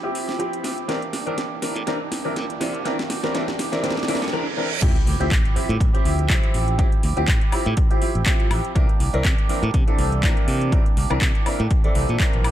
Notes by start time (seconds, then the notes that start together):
Already playing: riser
0.03 F3 C4 E4 G4
0.15 open hi-hat
0.27 A1 C4 E4 G4, snare
0.38 F3 C4 E4 G4, closed hi-hat
0.53 closed hi-hat
0.63 A1 F3 C4 E4 G4, snare, open hi-hat
0.76 C4 E4 G4, closed hi-hat
0.87 C2 E3 A#3 C4 D4 G4 A#4, snare, closed hi-hat
1.02 closed hi-hat
1.12 C2 E3 A#3 D4 G4, snare, open hi-hat
1.26 C2 E3 A#3 C4 D4 G4 A#4, closed hi-hat
1.37 C3 E3 A#3 D4 G4, snare, closed hi-hat
1.61 E3 A#3 C4 D4 G4 A#4, muted fingered electric bass stroke, snare, open hi-hat
1.75 A2 A#3 D4 G4, closed hi-hat
1.86 C3 E3 A#3 C4 D4 G4 A#4, snare, closed hi-hat
1.99 A#3 D4 G4
2.11 C2, snare, open hi-hat
2.24 E3 A#3 C4 D4 G4 A#4
2.35 A#2 E3 A#3 D4 G4, snare, closed hi-hat
2.50 closed hi-hat
2.60 C3 E3 A#3 C4 D4 G4 A#4, snare, open hi-hat
2.74 A#3 D4 G4, closed hi-hat
2.84 E3 A#3 C4 D4 G4 A#4, snare, closed hi-hat
2.99 snare, closed hi-hat
3.08 C2 E3 A#3 D4 G4, snare, open hi-hat
3.22 C2 E3 A#3 C4 D4 G4 A#4, snare, closed hi-hat
3.33 C3 E3 A#3 C4 D4 G4 A#4, snare, closed hi-hat
3.48 snare
3.58 E3 A#3 D4 G4, snare, open hi-hat
3.72 A2 E3 A#3 C4 D4 G4 A#4, snare, closed hi-hat
3.83 E3 A#3 C4 D4 G4 A#4, snare, closed hi-hat, reverse cymbal
3.90 snare
3.96 A#3 D4 G4, snare
4.03 snare
4.08 C2 E3 C4 D4 A#4, snare, open hi-hat
4.15 snare
4.21 A#2 A#3 D4 G4, snare
4.28 snare
4.33 E3 C4 D4 A#4
4.57 E3 C4 D4 A#4
4.81 D2 F3 C4 E4 G4, kick, closed hi-hat, crash, impact
4.96 closed hi-hat
5.06 D2 F3 C4 E4 G4, open hi-hat
5.20 D2 F3 C4 E4 G4, closed hi-hat
5.30 A1 F3 C4 E4, kick, clap, closed hi-hat
5.44 C4 E4 G4, closed hi-hat
5.55 F3 C4 E4 G4, muted fingered electric bass stroke, open hi-hat
5.68 A2 C4 E4 G4, closed hi-hat
5.80 A1, kick, closed hi-hat
5.93 F3 C4 E4 G4, closed hi-hat
6.04 D2 F3 C4 E4 G4, open hi-hat
6.19 closed hi-hat
6.29 C2 F3 C4 E4 G4, kick, clap, closed hi-hat
6.43 closed hi-hat
6.53 A1 F3 C4 E4 G4, open hi-hat
6.68 closed hi-hat
6.78 F3 C4 E4 G4, kick, closed hi-hat
6.92 closed hi-hat
7.03 D2 F3 C4 E4 G4, open hi-hat
7.17 D2 F3 C4 E4 G4, closed hi-hat
7.27 A1 F3 C4 G4, kick, clap, closed hi-hat
7.41 C4 E4 G4, closed hi-hat
7.52 F3 C4 E4 G4, muted fingered electric bass stroke, open hi-hat, high woodblock
7.65 A2 C4 E4 G4, closed hi-hat
7.77 kick, closed hi-hat
7.90 F3 C4 E4 G4, closed hi-hat
8.01 F3 C4 E4 G4, open hi-hat
8.15 A1, closed hi-hat
8.26 F3 C4 E4 G4, kick, clap, closed hi-hat
8.40 closed hi-hat
8.50 A1 F3 C4 E4 G4, open hi-hat, high woodblock
8.65 closed hi-hat
8.75 C2 E3 C4 D4 G4 A#4, kick, closed hi-hat
8.89 closed hi-hat
8.99 C2 E3 A#3 D4 G4, open hi-hat
9.13 C2 E3 C4 D4 A#4, closed hi-hat
9.24 C3 E3 A#3 D4 G4, kick, clap, closed hi-hat
9.37 A#3 D4 G4, closed hi-hat
9.48 E3 A#3 C4 D4 G4 A#4, muted fingered electric bass stroke, open hi-hat
9.62 A2 A#3 D4 G4, closed hi-hat
9.74 C3, kick, closed hi-hat
9.87 E3 A#3 C4 D4 G4 A4, closed hi-hat
9.98 C2 E3 A#3 D4 G4, open hi-hat
10.12 closed hi-hat
10.23 A#2 E3 C4 D4 G4 A#4, kick, clap, closed hi-hat
10.37 closed hi-hat
10.47 C3 E3 A#3 D4 G4, open hi-hat
10.61 closed hi-hat
10.71 E3 A#3 C4 D4 G4 A#4, kick, closed hi-hat
10.86 closed hi-hat
10.96 C2 E3 A#3 D4 G4, open hi-hat
11.10 C2 E3 C4 D4 A#4, closed hi-hat, high woodblock
11.21 C3 E3 A#3 D4 G4, kick, clap, closed hi-hat
11.34 A#3 D4 G4, closed hi-hat
11.45 E3 A#3 C4 D4 G4 A#4, muted fingered electric bass stroke, open hi-hat, high woodblock
11.59 A2 A#3 D4 G4, closed hi-hat
11.71 kick, closed hi-hat
11.83 E3 A#3 C4 D4 G4 A4, closed hi-hat
11.94 C2 E3 A#3 D4 G4, open hi-hat
12.09 A#2, closed hi-hat
12.19 E3 A#3 C4 D4 G4 A#4, kick, clap, closed hi-hat
12.33 A#1, closed hi-hat
12.43 E3 A#3 D4 G4, open hi-hat, high woodblock